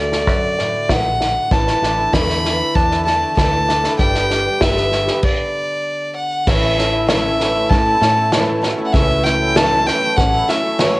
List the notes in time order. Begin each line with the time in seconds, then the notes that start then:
Already playing: D2 D3 A3 D4 F#4
0.00 D5
0.12 snare
0.27 F#2, kick, snare
0.58 A2, snare
0.89 A#1 F#5, kick, snare
1.21 D4, snare
1.51 A1 A2 E3 A3 D4 E4 A4 A5, kick, snare
1.67 A3, snare
1.82 A1 D4, snare
1.98 A3 D4 E4 A4
2.12 E2 A2 D3 E3 A3 D4 E4 A4 B5, kick, snare
2.29 A3, snare
2.44 E3 A3 D4 E4 A4, snare
2.59 A3 D4 E4 A4
2.75 E2 D4 A5, kick, snare
2.91 E4, snare
3.05 E2 A3 D4 E4 A4 A5, snare
3.21 A3 D4 E4 A4
3.37 D2 A2 E3 A3 D4 E4 A4 A5, kick, snare
3.54 A3
3.68 A3 D4 E4 A4, snare
3.84 A3 D4 E4 A4, snare
3.98 G1 G2 G3 D4 G4 B4 G5, kick, snare
4.14 B3, snare
4.30 D4, snare
4.45 D4 G4 B4
4.61 G1 D3 G3 D4 G4 B4 E5, kick, snare
4.77 B3, snare
4.92 G3 D4 G4 B4, snare
5.07 B3 D4 G4 B4, snare
5.23 D5, kick, crash
6.16 F#5
6.46 A1 A2 E3 A3 C#4 E4 A4 C#5 E5, kick, snare, crash
6.63 A3
6.78 A3 C#4 E4 C#5, snare
6.93 E4
7.08 A2 E3 A3 C#4 E4 A4 C#5 E5, snare
7.24 A3
7.39 E3 A3 C#4 E4 A4 C#5, snare
7.55 A3 C#4 E4 A4
7.70 A2 A3 C#4 E4 C#5 A5, kick, snare
7.85 A3 C#4 E4 A4
8.01 A2 A3 C#4 E4 A4 C#5, snare
8.17 A3 C#4 E4 A4
8.32 A2 E3 A3 C#4 E4 A4 C#5, snare
8.47 A3
8.62 A3 C#4 E4 F#4 A4, snare
8.78 A3 C#4 E4 A4
8.86 F#5
8.93 A1 C#2 A2 E3 F#3 A3 C#4 E4 A4 C#5 E5, kick, snare
9.10 A3
9.24 A3 C#4 E4 C#5 G5, snare
9.42 E4
9.55 A2 E3 A3 C#4 E4 A4 C#5 A5, snare
9.72 A3
9.86 E3 A3 C#4 E4 A4 B4 G5, snare
10.01 A3 C#4 E4 A4
10.16 A1 A3 C#4 E4 G4 F#5, kick, snare
10.32 A3 C#4 E4 A4
10.47 A3 C#4 E4 A4 E5, snare
10.51 E4 E5
10.63 A3 C#4 E4 A4
10.78 A2 E3 A3 C#4 E4 F#4 A4 C#5, snare
10.96 A3